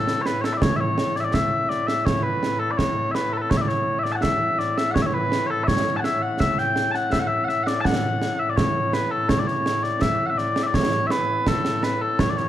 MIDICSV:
0, 0, Header, 1, 3, 480
1, 0, Start_track
1, 0, Key_signature, 3, "major"
1, 0, Tempo, 722892
1, 409, Time_signature, 2, 2, 24, 8
1, 8291, End_track
2, 0, Start_track
2, 0, Title_t, "Bagpipes"
2, 0, Program_c, 0, 109
2, 0, Note_on_c, 0, 45, 89
2, 0, Note_on_c, 0, 69, 81
2, 142, Note_off_c, 0, 69, 0
2, 142, Note_on_c, 0, 73, 81
2, 171, Note_off_c, 0, 73, 0
2, 171, Note_on_c, 0, 71, 81
2, 272, Note_off_c, 0, 71, 0
2, 272, Note_on_c, 0, 73, 65
2, 294, Note_off_c, 0, 73, 0
2, 294, Note_on_c, 0, 69, 65
2, 353, Note_off_c, 0, 69, 0
2, 353, Note_on_c, 0, 76, 60
2, 380, Note_off_c, 0, 76, 0
2, 380, Note_on_c, 0, 74, 60
2, 412, Note_off_c, 0, 74, 0
2, 412, Note_on_c, 0, 73, 97
2, 506, Note_off_c, 0, 73, 0
2, 506, Note_on_c, 0, 76, 79
2, 533, Note_off_c, 0, 76, 0
2, 533, Note_on_c, 0, 73, 79
2, 772, Note_off_c, 0, 73, 0
2, 772, Note_on_c, 0, 74, 83
2, 798, Note_off_c, 0, 74, 0
2, 798, Note_on_c, 0, 76, 71
2, 825, Note_off_c, 0, 76, 0
2, 825, Note_on_c, 0, 74, 84
2, 889, Note_off_c, 0, 74, 0
2, 889, Note_on_c, 0, 76, 86
2, 1122, Note_off_c, 0, 76, 0
2, 1122, Note_on_c, 0, 74, 87
2, 1241, Note_off_c, 0, 74, 0
2, 1241, Note_on_c, 0, 76, 79
2, 1364, Note_off_c, 0, 76, 0
2, 1364, Note_on_c, 0, 73, 88
2, 1479, Note_off_c, 0, 73, 0
2, 1479, Note_on_c, 0, 71, 82
2, 1721, Note_off_c, 0, 71, 0
2, 1721, Note_on_c, 0, 69, 84
2, 1799, Note_off_c, 0, 69, 0
2, 1799, Note_on_c, 0, 74, 68
2, 1843, Note_off_c, 0, 74, 0
2, 1843, Note_on_c, 0, 73, 88
2, 2067, Note_off_c, 0, 73, 0
2, 2067, Note_on_c, 0, 76, 79
2, 2090, Note_off_c, 0, 76, 0
2, 2090, Note_on_c, 0, 71, 79
2, 2210, Note_off_c, 0, 71, 0
2, 2210, Note_on_c, 0, 69, 72
2, 2239, Note_off_c, 0, 69, 0
2, 2239, Note_on_c, 0, 71, 55
2, 2267, Note_off_c, 0, 71, 0
2, 2267, Note_on_c, 0, 69, 67
2, 2324, Note_off_c, 0, 69, 0
2, 2324, Note_on_c, 0, 73, 108
2, 2371, Note_off_c, 0, 73, 0
2, 2371, Note_on_c, 0, 76, 64
2, 2399, Note_off_c, 0, 76, 0
2, 2399, Note_on_c, 0, 74, 64
2, 2445, Note_off_c, 0, 74, 0
2, 2445, Note_on_c, 0, 73, 87
2, 2649, Note_off_c, 0, 73, 0
2, 2649, Note_on_c, 0, 76, 85
2, 2678, Note_off_c, 0, 76, 0
2, 2678, Note_on_c, 0, 74, 85
2, 2736, Note_off_c, 0, 74, 0
2, 2736, Note_on_c, 0, 81, 72
2, 2758, Note_off_c, 0, 81, 0
2, 2758, Note_on_c, 0, 78, 72
2, 2802, Note_off_c, 0, 78, 0
2, 2802, Note_on_c, 0, 76, 97
2, 3045, Note_off_c, 0, 76, 0
2, 3045, Note_on_c, 0, 74, 87
2, 3169, Note_off_c, 0, 74, 0
2, 3169, Note_on_c, 0, 76, 83
2, 3259, Note_off_c, 0, 76, 0
2, 3259, Note_on_c, 0, 78, 102
2, 3283, Note_off_c, 0, 78, 0
2, 3283, Note_on_c, 0, 73, 102
2, 3333, Note_off_c, 0, 73, 0
2, 3333, Note_on_c, 0, 76, 70
2, 3361, Note_off_c, 0, 76, 0
2, 3361, Note_on_c, 0, 73, 70
2, 3411, Note_off_c, 0, 73, 0
2, 3411, Note_on_c, 0, 71, 91
2, 3629, Note_off_c, 0, 71, 0
2, 3629, Note_on_c, 0, 73, 92
2, 3654, Note_off_c, 0, 73, 0
2, 3654, Note_on_c, 0, 69, 92
2, 3744, Note_off_c, 0, 69, 0
2, 3744, Note_on_c, 0, 76, 104
2, 3768, Note_off_c, 0, 76, 0
2, 3768, Note_on_c, 0, 73, 104
2, 3961, Note_off_c, 0, 73, 0
2, 3961, Note_on_c, 0, 81, 72
2, 3982, Note_off_c, 0, 81, 0
2, 3982, Note_on_c, 0, 78, 72
2, 4014, Note_off_c, 0, 78, 0
2, 4014, Note_on_c, 0, 76, 85
2, 4132, Note_off_c, 0, 76, 0
2, 4132, Note_on_c, 0, 78, 92
2, 4251, Note_off_c, 0, 78, 0
2, 4251, Note_on_c, 0, 76, 108
2, 4373, Note_off_c, 0, 76, 0
2, 4373, Note_on_c, 0, 79, 90
2, 4591, Note_off_c, 0, 79, 0
2, 4591, Note_on_c, 0, 81, 92
2, 4613, Note_off_c, 0, 81, 0
2, 4613, Note_on_c, 0, 78, 92
2, 4727, Note_off_c, 0, 78, 0
2, 4727, Note_on_c, 0, 76, 98
2, 4778, Note_off_c, 0, 76, 0
2, 4778, Note_on_c, 0, 78, 84
2, 4829, Note_off_c, 0, 78, 0
2, 4829, Note_on_c, 0, 76, 93
2, 4943, Note_off_c, 0, 76, 0
2, 4943, Note_on_c, 0, 78, 92
2, 4970, Note_off_c, 0, 78, 0
2, 4970, Note_on_c, 0, 76, 92
2, 5068, Note_off_c, 0, 76, 0
2, 5068, Note_on_c, 0, 78, 83
2, 5093, Note_off_c, 0, 78, 0
2, 5093, Note_on_c, 0, 74, 83
2, 5184, Note_off_c, 0, 74, 0
2, 5184, Note_on_c, 0, 81, 112
2, 5211, Note_off_c, 0, 81, 0
2, 5211, Note_on_c, 0, 78, 112
2, 5574, Note_off_c, 0, 78, 0
2, 5574, Note_on_c, 0, 76, 91
2, 5641, Note_off_c, 0, 76, 0
2, 5641, Note_on_c, 0, 74, 66
2, 5688, Note_off_c, 0, 74, 0
2, 5688, Note_on_c, 0, 73, 98
2, 5933, Note_off_c, 0, 73, 0
2, 5933, Note_on_c, 0, 71, 83
2, 6049, Note_off_c, 0, 71, 0
2, 6049, Note_on_c, 0, 69, 72
2, 6167, Note_off_c, 0, 69, 0
2, 6167, Note_on_c, 0, 73, 96
2, 6236, Note_off_c, 0, 73, 0
2, 6236, Note_on_c, 0, 74, 65
2, 6289, Note_off_c, 0, 74, 0
2, 6289, Note_on_c, 0, 73, 85
2, 6529, Note_off_c, 0, 73, 0
2, 6529, Note_on_c, 0, 74, 84
2, 6648, Note_off_c, 0, 74, 0
2, 6648, Note_on_c, 0, 76, 92
2, 6814, Note_off_c, 0, 76, 0
2, 6814, Note_on_c, 0, 78, 71
2, 6839, Note_off_c, 0, 78, 0
2, 6839, Note_on_c, 0, 76, 71
2, 6889, Note_off_c, 0, 76, 0
2, 6889, Note_on_c, 0, 74, 86
2, 7057, Note_off_c, 0, 74, 0
2, 7057, Note_on_c, 0, 76, 68
2, 7081, Note_off_c, 0, 76, 0
2, 7081, Note_on_c, 0, 74, 68
2, 7137, Note_off_c, 0, 74, 0
2, 7137, Note_on_c, 0, 73, 93
2, 7349, Note_off_c, 0, 73, 0
2, 7349, Note_on_c, 0, 76, 94
2, 7376, Note_off_c, 0, 76, 0
2, 7376, Note_on_c, 0, 71, 94
2, 7621, Note_off_c, 0, 71, 0
2, 7621, Note_on_c, 0, 69, 76
2, 7857, Note_off_c, 0, 69, 0
2, 7857, Note_on_c, 0, 71, 73
2, 7977, Note_off_c, 0, 71, 0
2, 7977, Note_on_c, 0, 69, 64
2, 8096, Note_off_c, 0, 69, 0
2, 8096, Note_on_c, 0, 73, 101
2, 8166, Note_off_c, 0, 73, 0
2, 8166, Note_on_c, 0, 74, 62
2, 8218, Note_off_c, 0, 74, 0
2, 8218, Note_on_c, 0, 73, 81
2, 8291, Note_off_c, 0, 45, 0
2, 8291, Note_off_c, 0, 73, 0
2, 8291, End_track
3, 0, Start_track
3, 0, Title_t, "Drums"
3, 50, Note_on_c, 9, 38, 69
3, 116, Note_off_c, 9, 38, 0
3, 170, Note_on_c, 9, 38, 70
3, 237, Note_off_c, 9, 38, 0
3, 292, Note_on_c, 9, 38, 68
3, 358, Note_off_c, 9, 38, 0
3, 410, Note_on_c, 9, 35, 66
3, 410, Note_on_c, 9, 38, 105
3, 477, Note_off_c, 9, 35, 0
3, 477, Note_off_c, 9, 38, 0
3, 649, Note_on_c, 9, 38, 81
3, 716, Note_off_c, 9, 38, 0
3, 770, Note_on_c, 9, 38, 27
3, 836, Note_off_c, 9, 38, 0
3, 889, Note_on_c, 9, 35, 48
3, 889, Note_on_c, 9, 38, 84
3, 956, Note_off_c, 9, 35, 0
3, 956, Note_off_c, 9, 38, 0
3, 1132, Note_on_c, 9, 38, 28
3, 1199, Note_off_c, 9, 38, 0
3, 1251, Note_on_c, 9, 38, 68
3, 1317, Note_off_c, 9, 38, 0
3, 1372, Note_on_c, 9, 35, 58
3, 1372, Note_on_c, 9, 38, 88
3, 1438, Note_off_c, 9, 35, 0
3, 1438, Note_off_c, 9, 38, 0
3, 1612, Note_on_c, 9, 38, 71
3, 1679, Note_off_c, 9, 38, 0
3, 1851, Note_on_c, 9, 35, 48
3, 1851, Note_on_c, 9, 38, 80
3, 1917, Note_off_c, 9, 35, 0
3, 1917, Note_off_c, 9, 38, 0
3, 2090, Note_on_c, 9, 38, 68
3, 2157, Note_off_c, 9, 38, 0
3, 2330, Note_on_c, 9, 35, 63
3, 2330, Note_on_c, 9, 38, 96
3, 2397, Note_off_c, 9, 35, 0
3, 2397, Note_off_c, 9, 38, 0
3, 2451, Note_on_c, 9, 38, 25
3, 2517, Note_off_c, 9, 38, 0
3, 2692, Note_on_c, 9, 38, 28
3, 2758, Note_off_c, 9, 38, 0
3, 2811, Note_on_c, 9, 35, 46
3, 2811, Note_on_c, 9, 38, 92
3, 2878, Note_off_c, 9, 35, 0
3, 2878, Note_off_c, 9, 38, 0
3, 3052, Note_on_c, 9, 38, 30
3, 3118, Note_off_c, 9, 38, 0
3, 3172, Note_on_c, 9, 38, 73
3, 3238, Note_off_c, 9, 38, 0
3, 3292, Note_on_c, 9, 35, 59
3, 3292, Note_on_c, 9, 38, 93
3, 3358, Note_off_c, 9, 35, 0
3, 3358, Note_off_c, 9, 38, 0
3, 3531, Note_on_c, 9, 38, 74
3, 3598, Note_off_c, 9, 38, 0
3, 3772, Note_on_c, 9, 35, 52
3, 3772, Note_on_c, 9, 38, 81
3, 3838, Note_off_c, 9, 35, 0
3, 3838, Note_off_c, 9, 38, 0
3, 4012, Note_on_c, 9, 38, 67
3, 4079, Note_off_c, 9, 38, 0
3, 4252, Note_on_c, 9, 35, 53
3, 4252, Note_on_c, 9, 38, 85
3, 4319, Note_off_c, 9, 35, 0
3, 4319, Note_off_c, 9, 38, 0
3, 4370, Note_on_c, 9, 38, 24
3, 4436, Note_off_c, 9, 38, 0
3, 4488, Note_on_c, 9, 38, 70
3, 4555, Note_off_c, 9, 38, 0
3, 4610, Note_on_c, 9, 38, 26
3, 4677, Note_off_c, 9, 38, 0
3, 4732, Note_on_c, 9, 35, 46
3, 4732, Note_on_c, 9, 38, 87
3, 4798, Note_off_c, 9, 35, 0
3, 4798, Note_off_c, 9, 38, 0
3, 4973, Note_on_c, 9, 38, 26
3, 5039, Note_off_c, 9, 38, 0
3, 5092, Note_on_c, 9, 38, 69
3, 5159, Note_off_c, 9, 38, 0
3, 5214, Note_on_c, 9, 35, 61
3, 5214, Note_on_c, 9, 38, 94
3, 5280, Note_off_c, 9, 35, 0
3, 5280, Note_off_c, 9, 38, 0
3, 5455, Note_on_c, 9, 38, 76
3, 5522, Note_off_c, 9, 38, 0
3, 5694, Note_on_c, 9, 35, 54
3, 5694, Note_on_c, 9, 38, 88
3, 5761, Note_off_c, 9, 35, 0
3, 5761, Note_off_c, 9, 38, 0
3, 5932, Note_on_c, 9, 38, 78
3, 5998, Note_off_c, 9, 38, 0
3, 6170, Note_on_c, 9, 35, 61
3, 6170, Note_on_c, 9, 38, 102
3, 6237, Note_off_c, 9, 35, 0
3, 6237, Note_off_c, 9, 38, 0
3, 6293, Note_on_c, 9, 38, 26
3, 6360, Note_off_c, 9, 38, 0
3, 6414, Note_on_c, 9, 38, 77
3, 6481, Note_off_c, 9, 38, 0
3, 6532, Note_on_c, 9, 38, 26
3, 6598, Note_off_c, 9, 38, 0
3, 6652, Note_on_c, 9, 35, 47
3, 6652, Note_on_c, 9, 38, 85
3, 6718, Note_off_c, 9, 35, 0
3, 6718, Note_off_c, 9, 38, 0
3, 6893, Note_on_c, 9, 38, 26
3, 6960, Note_off_c, 9, 38, 0
3, 7012, Note_on_c, 9, 38, 76
3, 7079, Note_off_c, 9, 38, 0
3, 7132, Note_on_c, 9, 35, 59
3, 7132, Note_on_c, 9, 38, 99
3, 7198, Note_off_c, 9, 35, 0
3, 7198, Note_off_c, 9, 38, 0
3, 7373, Note_on_c, 9, 38, 78
3, 7440, Note_off_c, 9, 38, 0
3, 7613, Note_on_c, 9, 35, 52
3, 7613, Note_on_c, 9, 38, 93
3, 7679, Note_off_c, 9, 35, 0
3, 7679, Note_off_c, 9, 38, 0
3, 7734, Note_on_c, 9, 38, 75
3, 7800, Note_off_c, 9, 38, 0
3, 7854, Note_on_c, 9, 38, 74
3, 7920, Note_off_c, 9, 38, 0
3, 8095, Note_on_c, 9, 35, 62
3, 8095, Note_on_c, 9, 38, 102
3, 8161, Note_off_c, 9, 35, 0
3, 8161, Note_off_c, 9, 38, 0
3, 8215, Note_on_c, 9, 38, 29
3, 8281, Note_off_c, 9, 38, 0
3, 8291, End_track
0, 0, End_of_file